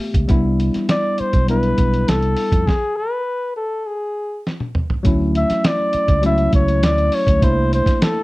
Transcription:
Already playing: A3 B3 G4 E5
0.14 C#2, kick, closed hi-hat
0.28 C2 G3 B3 D4 E4, kick, closed hi-hat
0.60 closed hi-hat
0.74 muted fingered electric bass stroke, snare, closed hi-hat
0.89 D5, snare, closed hi-hat
1.18 C5, muted fingered electric bass stroke, closed hi-hat
1.33 B1, kick, closed hi-hat
1.48 G3 B3 D4 E4 B4, closed hi-hat
1.63 closed hi-hat
1.78 B1, kick, closed hi-hat
1.94 closed hi-hat
2.08 C2 A4, snare, closed hi-hat
2.23 closed hi-hat
2.37 open hi-hat
2.52 F2, kick, closed hi-hat
2.67 G#4, kick, snare
2.96 B4
3.56 A4
3.86 G#4
4.47 snare
4.60 high tom
4.75 mid tom
4.90 floor tom
5.03 D2 F#3 A3 C#4 E4, kick, closed hi-hat
5.35 E5, closed hi-hat
5.50 muted fingered electric bass stroke, snare, closed hi-hat
5.64 D5, snare, closed hi-hat
5.93 muted fingered electric bass stroke, closed hi-hat
6.08 C#2, kick, closed hi-hat
6.22 F#3 A3 C#4 E4 E5, closed hi-hat
6.38 closed hi-hat
6.53 C#2 C#5, kick, closed hi-hat
6.68 closed hi-hat
6.83 D2 D5, snare, closed hi-hat
6.98 closed hi-hat
7.12 C#5, open hi-hat
7.27 D2, kick, closed hi-hat
7.40 C2 A3 A#3 D4 E4, kick, closed hi-hat
7.44 C5
7.73 C5, closed hi-hat
7.86 muted fingered electric bass stroke, kick, snare, closed hi-hat
8.02 A4, snare, closed hi-hat

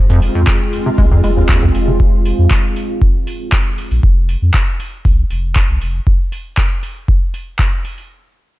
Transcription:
Already playing: F1 G#3 C4 F4
0.10 F2
0.22 open hi-hat
0.35 F2
0.47 kick, clap
0.73 open hi-hat
0.86 C3
0.98 C2 G#3, kick, open hi-hat
1.11 F2
1.24 F1 G#3, open hi-hat
1.37 D#2
1.49 D#2, kick, clap
1.62 C2 F2
1.75 F1, open hi-hat
1.88 C3
2.00 kick
2.25 open hi-hat
2.39 F2
2.51 kick, clap
2.76 open hi-hat
3.02 kick
3.27 open hi-hat
3.52 kick, clap
3.78 open hi-hat
3.91 A#1, open hi-hat
4.03 F1, kick
4.29 open hi-hat
4.42 F2
4.54 kick, clap
4.80 open hi-hat
5.05 C2, kick, open hi-hat
5.30 F1, open hi-hat
5.56 kick, clap
5.69 C2
5.81 F1, open hi-hat
6.07 kick
6.32 open hi-hat
6.57 kick, clap
6.83 open hi-hat
7.08 kick
7.34 open hi-hat
7.59 kick, clap
7.85 open hi-hat
7.98 open hi-hat

